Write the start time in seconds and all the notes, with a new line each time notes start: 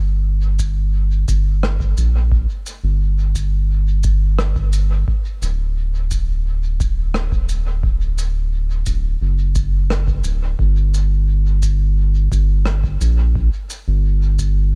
Already playing: G1
0.59 kick, shaker
1.28 G1, kick, shaker
1.63 cross-stick
1.80 kick
1.97 A#1, shaker
2.32 kick
2.66 shaker
2.84 G1
3.35 kick, shaker
4.03 kick, shaker
4.39 cross-stick
4.56 kick
4.73 shaker
5.08 kick
5.42 D1, shaker
6.11 kick, shaker
6.80 kick, shaker
7.14 cross-stick
7.32 kick
7.49 shaker
7.83 kick
8.18 shaker
8.86 D1, kick, shaker
9.21 F#1
9.55 kick, shaker
9.90 cross-stick
10.07 kick
10.24 D1, shaker
10.59 G1, kick
10.94 shaker
11.63 kick, shaker
12.32 G1, kick, shaker
12.66 cross-stick
12.84 kick
13.01 A#1, shaker
13.35 kick
13.70 shaker
13.88 G1
14.39 kick, shaker